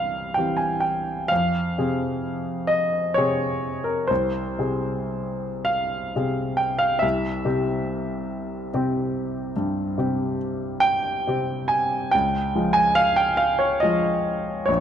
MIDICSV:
0, 0, Header, 1, 2, 480
1, 0, Start_track
1, 0, Key_signature, -4, "minor"
1, 0, Tempo, 936037
1, 667, Time_signature, 12, 3, 24, 8
1, 2102, Tempo, 1027397
1, 3062, Tempo, 862069
1, 4502, Tempo, 827586
1, 5462, Tempo, 858369
1, 7926, End_track
2, 0, Start_track
2, 0, Title_t, "Grand piano"
2, 0, Program_c, 0, 0
2, 0, Control_c, 0, 64, 127
2, 0, Note_on_c, 0, 36, 50
2, 0, Note_on_c, 0, 52, 31
2, 0, Note_on_c, 0, 60, 35
2, 0, Note_on_c, 0, 67, 39
2, 0, Note_on_c, 0, 77, 84
2, 162, Note_off_c, 0, 52, 0
2, 163, Note_off_c, 0, 60, 0
2, 163, Note_off_c, 0, 67, 0
2, 175, Note_off_c, 0, 77, 0
2, 176, Note_on_c, 0, 79, 72
2, 191, Note_on_c, 0, 52, 34
2, 195, Note_on_c, 0, 60, 33
2, 197, Note_on_c, 0, 67, 38
2, 290, Note_on_c, 0, 80, 64
2, 298, Note_off_c, 0, 79, 0
2, 413, Note_on_c, 0, 79, 67
2, 417, Note_off_c, 0, 80, 0
2, 652, Note_off_c, 0, 52, 0
2, 653, Note_off_c, 0, 60, 0
2, 654, Note_off_c, 0, 67, 0
2, 658, Note_on_c, 0, 77, 92
2, 662, Note_off_c, 0, 79, 0
2, 674, Note_on_c, 0, 41, 50
2, 676, Control_c, 0, 64, 0
2, 678, Note_off_c, 0, 36, 0
2, 776, Control_c, 0, 64, 127
2, 903, Note_off_c, 0, 41, 0
2, 914, Note_on_c, 0, 48, 41
2, 916, Note_on_c, 0, 60, 39
2, 917, Note_on_c, 0, 68, 41
2, 1371, Note_on_c, 0, 75, 82
2, 1381, Note_off_c, 0, 77, 0
2, 1608, Note_off_c, 0, 48, 0
2, 1609, Note_off_c, 0, 60, 0
2, 1610, Note_off_c, 0, 68, 0
2, 1612, Note_on_c, 0, 73, 84
2, 1618, Note_off_c, 0, 75, 0
2, 1629, Note_on_c, 0, 48, 38
2, 1629, Note_on_c, 0, 60, 44
2, 1631, Note_on_c, 0, 68, 48
2, 1970, Note_on_c, 0, 70, 66
2, 1977, Note_off_c, 0, 73, 0
2, 2084, Note_off_c, 0, 48, 0
2, 2084, Note_off_c, 0, 60, 0
2, 2085, Note_off_c, 0, 68, 0
2, 2090, Note_on_c, 0, 72, 77
2, 2095, Note_off_c, 0, 70, 0
2, 2105, Note_on_c, 0, 36, 49
2, 2109, Control_c, 0, 64, 0
2, 2185, Control_c, 0, 64, 127
2, 2327, Note_off_c, 0, 36, 0
2, 2330, Note_on_c, 0, 48, 40
2, 2333, Note_on_c, 0, 60, 35
2, 2334, Note_on_c, 0, 68, 42
2, 2825, Note_on_c, 0, 77, 86
2, 2834, Note_off_c, 0, 72, 0
2, 3044, Note_off_c, 0, 48, 0
2, 3045, Note_off_c, 0, 60, 0
2, 3045, Note_off_c, 0, 68, 0
2, 3064, Note_on_c, 0, 48, 42
2, 3067, Note_on_c, 0, 60, 39
2, 3069, Note_on_c, 0, 68, 40
2, 3293, Note_on_c, 0, 79, 74
2, 3301, Note_off_c, 0, 77, 0
2, 3414, Note_on_c, 0, 77, 91
2, 3422, Note_off_c, 0, 79, 0
2, 3527, Note_on_c, 0, 76, 82
2, 3529, Note_off_c, 0, 48, 0
2, 3530, Note_off_c, 0, 60, 0
2, 3531, Note_off_c, 0, 68, 0
2, 3542, Note_off_c, 0, 77, 0
2, 3546, Note_on_c, 0, 36, 52
2, 3561, Control_c, 0, 64, 0
2, 3657, Control_c, 0, 64, 127
2, 3778, Note_off_c, 0, 36, 0
2, 3784, Note_on_c, 0, 48, 44
2, 3786, Note_on_c, 0, 60, 44
2, 3788, Note_on_c, 0, 67, 47
2, 4478, Note_off_c, 0, 48, 0
2, 4480, Note_off_c, 0, 60, 0
2, 4480, Note_off_c, 0, 67, 0
2, 4501, Note_on_c, 0, 48, 43
2, 4503, Note_on_c, 0, 60, 49
2, 4507, Note_on_c, 0, 67, 50
2, 4954, Note_off_c, 0, 48, 0
2, 4955, Note_off_c, 0, 60, 0
2, 4957, Note_off_c, 0, 67, 0
2, 4981, Note_on_c, 0, 43, 51
2, 5211, Note_off_c, 0, 43, 0
2, 5219, Note_on_c, 0, 48, 43
2, 5225, Note_on_c, 0, 60, 39
2, 5226, Note_on_c, 0, 67, 44
2, 5450, Note_off_c, 0, 76, 0
2, 5690, Note_on_c, 0, 79, 101
2, 5929, Note_off_c, 0, 48, 0
2, 5931, Note_off_c, 0, 60, 0
2, 5932, Note_off_c, 0, 67, 0
2, 5953, Note_on_c, 0, 48, 46
2, 5957, Note_on_c, 0, 60, 43
2, 5961, Note_on_c, 0, 67, 44
2, 6180, Note_on_c, 0, 80, 80
2, 6185, Note_off_c, 0, 79, 0
2, 6410, Note_off_c, 0, 48, 0
2, 6413, Note_off_c, 0, 60, 0
2, 6414, Note_off_c, 0, 67, 0
2, 6423, Note_on_c, 0, 79, 89
2, 6425, Note_off_c, 0, 80, 0
2, 6440, Note_on_c, 0, 37, 54
2, 6441, Control_c, 0, 64, 0
2, 6540, Control_c, 0, 64, 127
2, 6662, Note_off_c, 0, 37, 0
2, 6669, Note_on_c, 0, 53, 44
2, 6670, Note_on_c, 0, 56, 47
2, 6671, Note_on_c, 0, 65, 48
2, 6768, Note_on_c, 0, 80, 98
2, 6776, Note_off_c, 0, 79, 0
2, 6892, Note_off_c, 0, 80, 0
2, 6892, Note_on_c, 0, 77, 103
2, 7010, Note_on_c, 0, 79, 84
2, 7014, Note_off_c, 0, 77, 0
2, 7127, Note_on_c, 0, 77, 91
2, 7133, Note_off_c, 0, 79, 0
2, 7247, Note_on_c, 0, 73, 76
2, 7251, Note_off_c, 0, 77, 0
2, 7354, Note_off_c, 0, 53, 0
2, 7355, Note_off_c, 0, 56, 0
2, 7355, Note_off_c, 0, 65, 0
2, 7367, Note_on_c, 0, 75, 86
2, 7369, Note_off_c, 0, 73, 0
2, 7380, Note_on_c, 0, 53, 48
2, 7386, Note_on_c, 0, 56, 46
2, 7386, Note_on_c, 0, 65, 54
2, 7841, Note_off_c, 0, 53, 0
2, 7844, Note_off_c, 0, 56, 0
2, 7844, Note_off_c, 0, 65, 0
2, 7845, Note_on_c, 0, 73, 81
2, 7856, Note_off_c, 0, 75, 0
2, 7859, Note_on_c, 0, 34, 66
2, 7869, Control_c, 0, 64, 0
2, 7926, Note_off_c, 0, 34, 0
2, 7926, Note_off_c, 0, 73, 0
2, 7926, End_track
0, 0, End_of_file